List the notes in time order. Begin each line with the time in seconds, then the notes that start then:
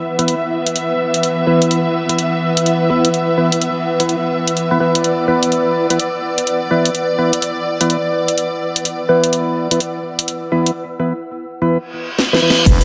Already playing: E3 B3 E4 B4 E5 F#5 E6
0.19 E3 B3 E4 B4, closed hi-hat
0.28 closed hi-hat
0.66 closed hi-hat
0.76 closed hi-hat
1.14 closed hi-hat
1.23 closed hi-hat
1.47 E3 B3 E4 B4
1.62 closed hi-hat
1.71 closed hi-hat
2.09 E3 B3 E4 B4, closed hi-hat
2.18 closed hi-hat
2.57 closed hi-hat
2.66 closed hi-hat
2.90 E3 B3 E4 B4
3.05 closed hi-hat
3.14 closed hi-hat
3.38 E3 B3 E4 B4
3.52 closed hi-hat
3.61 closed hi-hat
4.00 E3 B3 E4 B4, closed hi-hat
4.09 closed hi-hat
4.47 closed hi-hat
4.57 closed hi-hat
4.71 E3 B3 E4 B4
4.80 E3 B3 E4 B4
4.95 closed hi-hat
5.04 D5, closed hi-hat
5.28 E3 B3 E4 B4
5.43 closed hi-hat
5.52 closed hi-hat
5.90 E3 B3 E4 B4, closed hi-hat
5.99 closed hi-hat
6.38 closed hi-hat
6.47 closed hi-hat
6.71 E3 B3 E4 B4
6.85 closed hi-hat
6.95 closed hi-hat
7.18 E3 B3 E4 B4
7.33 closed hi-hat
7.42 closed hi-hat
7.81 E3 B3 E4 B4, closed hi-hat
7.90 closed hi-hat
8.28 closed hi-hat
8.38 closed hi-hat
8.76 closed hi-hat
8.85 closed hi-hat
9.09 E3 B3 E4 B4
9.24 closed hi-hat
9.33 closed hi-hat
9.71 E3 B3 E4 B4, closed hi-hat
9.80 closed hi-hat
10.19 closed hi-hat
10.28 closed hi-hat
10.52 E3 B3 E4 B4
10.66 closed hi-hat
10.99 E3 B3 E4 B4
11.62 E3 B3 E4 B4
11.71 reverse cymbal
12.19 snare
12.33 E3 B3 E4 B4, snare
12.42 E3 B3 E4 B4
12.50 snare
12.66 E1 E3 B3 B4 E5, kick, closed hi-hat, crash, impact, shaker
12.81 E1, closed hi-hat, shaker